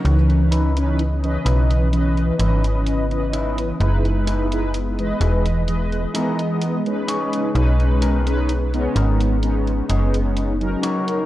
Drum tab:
HH |xxxxxxxxxxxxxxxx|xxxxxxxxxxxxxxxx|xxxxxxxxxxxxxxxx|